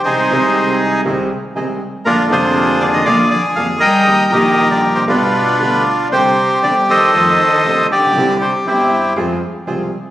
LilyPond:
<<
  \new Staff \with { instrumentName = "Bandoneon" } { \time 4/4 \key g \phrygian \tempo 4 = 119 << { c''4. r2 r8 | bes'8 c''4 d''16 ees''16 f''8 d''8 f''8 g''8~ | g''8 ees''8. d''8 c''16 b'4. r8 | \key f \dorian c''4 d''8 ees''2 d''8~ |
d''8 c''8 g'4 r2 | } \\ { <ees' aes'>2 r2 | <d' f'>8 <f' aes'>4. <aes' d''>4. <bes' ees''>8~ | <bes' ees''>8 <g' bes'>4. <d' f'>2 | g'4. <a' c''>2 g'8~ |
g'4 <c' e'>4 r2 | } >> }
  \new Staff \with { instrumentName = "Bandoneon" } { \time 4/4 \key g \phrygian <c' ees' aes'>8 <c' ees' aes'>4. <c' ees' aes'>8 r8 <c' ees' aes'>8 r8 | <bes d' aes'>8 <bes d' aes'>4. <bes d' aes'>8 r8 <bes d' aes'>8 r8 | <bes ees' g'>8 <bes ees' g'>4. <b f' g'>8 r8 <b f' g'>8 r8 | \key f \dorian <c' d' g'>8 r8 <c' d' g'>8 r8 <a ees' f'>8 r8 <a ees' f'>8 r8 |
<c' e' g'>8 r8 <c' e' g'>8 r8 <c' f' aes'>8 r8 <c' f' aes'>8 r8 | }
  \new Staff \with { instrumentName = "Grand piano" } { \clef bass \time 4/4 \key g \phrygian <c, c ees aes c' aes'>8 <c, c ees aes c' aes'>4. <c, c ees aes c' aes'>8 r8 <c, c ees aes c' aes'>8 r8 | <bes,, bes, d aes bes f'>8 <f,, f, d aes bes f'>4. <bes,, bes, d aes bes f'>8 r8 <f,, f, d aes bes f'>8 r8 | <ees, ees g bes g'>8 <bes,, bes, ees g bes g'>4. <g,, g, d g b f'>8 r8 <d, d g b f'>8 r8 | \key f \dorian <c, c d g c' g'>8 r8 <g,, g, d g c' g'>8 r8 <f, ees f a c' f'>8 r8 <c, c ees a c' f'>8 r32 a,,32 bes,,32 b,,32 |
<c, c e g c' g'>8 r8 <g,, g, e g c' g'>8 r8 <f, f aes c' aes'>8 r8 <c, c f aes c' aes'>8 r8 | }
  \new Staff \with { instrumentName = "Cello" } { \clef bass \time 4/4 \key g \phrygian c4. r2 r8 | bes,8 c4 d16 ees16 f8 d8 f8 g8~ | g8 ees8. d8 c16 b,4. r8 | \key f \dorian c4 d8 ees2 d8~ |
d8 c8 g,4 r2 | }
  \new Staff \with { instrumentName = "Upright bass" } { \clef bass \time 4/4 \key g \phrygian c,16. r32 c,4~ c,16. r32 c,16. r8 r32 c,16. r8 r32 | bes,,16. r32 f,,4~ f,,16. r32 bes,,16. r8 r32 f,,16. r8 r32 | ees,16. r32 bes,,4~ bes,,16. r32 g,,16. r8 r32 d,16. r8 r32 | \key f \dorian c,16. r8 r32 g,,16. r8 r32 f,16. r8 r32 c,16. r16 a,,32 bes,,32 b,,32 |
c,16. r8 r32 g,,16. r8 r32 f,16. r8 r32 c,16. r8 r32 | }
>>